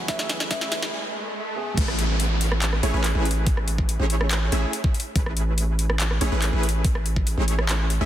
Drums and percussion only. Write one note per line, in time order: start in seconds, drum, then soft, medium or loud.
0.08 kick loud
0.08 snare medium
0.08 closed hi-hat medium
0.19 snare medium
0.29 snare medium
0.29 closed hi-hat medium
0.40 snare medium
0.51 kick loud
0.51 snare medium
0.51 closed hi-hat medium
0.61 snare medium
0.72 snare loud
0.72 closed hi-hat medium
0.83 snare medium
1.78 kick loud
1.78 closed hi-hat medium
1.78 crash loud
1.88 cross-stick medium
1.99 closed hi-hat medium
2.20 closed hi-hat medium
2.41 closed hi-hat medium
2.52 cross-stick medium
2.62 clap loud
2.62 closed hi-hat medium
2.73 cross-stick medium
2.83 closed hi-hat medium
3.04 clap medium
3.04 closed hi-hat medium
3.25 closed hi-hat medium
3.31 closed hi-hat medium
3.47 kick loud
3.47 closed hi-hat medium
3.57 cross-stick medium
3.68 closed hi-hat medium
3.78 kick medium
3.89 closed hi-hat medium
4.10 closed hi-hat medium
4.21 cross-stick medium
4.31 clap loud
4.31 closed hi-hat medium
4.52 closed hi-hat medium
4.73 closed hi-hat medium
4.84 kick loud
4.94 closed hi-hat medium
5.00 closed hi-hat medium
5.16 kick loud
5.16 closed hi-hat medium
5.26 cross-stick medium
5.37 closed hi-hat medium
5.58 closed hi-hat medium
5.79 closed hi-hat medium
5.90 cross-stick medium
6.00 clap loud
6.00 closed hi-hat medium
6.11 cross-stick medium
6.21 closed hi-hat medium
6.42 clap medium
6.42 closed hi-hat medium
6.63 closed hi-hat medium
6.69 closed hi-hat medium
6.85 kick loud
6.85 closed hi-hat medium
6.95 cross-stick medium
7.06 closed hi-hat medium
7.16 kick medium
7.27 closed hi-hat medium
7.48 closed hi-hat medium
7.59 cross-stick medium
7.69 clap loud
7.69 closed hi-hat medium
7.90 closed hi-hat medium